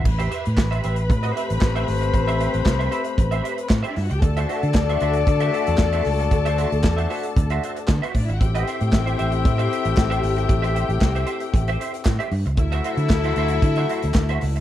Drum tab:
CC |x---------------|----------------|----------------|----------------|
HH |-xxx-xxxxxxx-xox|xxxx-xxxxxxx-xox|xxxx-xxxxxxx-xox|xxxx-xoxxxxx-xox|
CP |----x-------x---|----x-------x---|----x-------x---|----x-------x---|
SD |----o-------o-o-|----o-------o-o-|----o-------o-o-|----o-------o---|
BD |o---o---o---o---|o---o---o---o---|o---o---o---o---|o---o---o---o-o-|

CC |----------------|----------------|----------------|
HH |xxxx-xxxxxxx-xox|xxxx-xxxxxxx-xox|xxxx-xxxxxxx-xox|
CP |----x-------x---|----x-------x---|----x-------x---|
SD |----o-------o-o-|----o-------o---|----o-------o-o-|
BD |o---o---o---o---|o---o---o---o---|o---o---o---o---|